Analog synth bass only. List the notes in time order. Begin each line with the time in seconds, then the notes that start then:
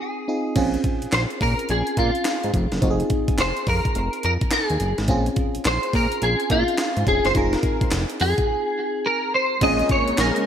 0.56 A#1
1.03 A#1
1.13 A#1
1.41 A#2
1.70 A#1
1.97 A#2
2.44 G#2
2.54 F1
2.72 F#1
2.82 F1
3.29 F1
3.39 F1
3.67 F2
3.96 F1
4.24 F2
4.70 D#2
4.81 F#1
4.99 G#1
5.09 A#1
5.55 A#1
5.65 A#1
5.94 A#2
6.22 A#1
6.50 A#2
6.97 G#2
7.07 F1
7.25 F#1
7.35 F1
7.81 F1
7.92 F1
8.21 F2
9.62 A#1
10.09 A#1
10.18 A#1